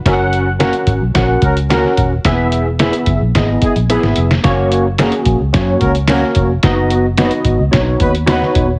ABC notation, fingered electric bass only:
X:1
M:4/4
L:1/16
Q:1/4=109
K:F#mix
V:1 name="Fingered electric bass" clef=bass
F,,,4- F,,, z G,,, B,,, A,,,2 C,,4 D,,,2 | E,,,4- E,,, z F,,, A,,, G,,,2 z A,,,2 G,,, ^E,,,2 | F,,,4- F,,, z A,,, C,, F,,2 C,,4 ^E,,,2 | F,,,4- F,,, z G,,, C,, B,,,2 D,,4 D,,,2 |]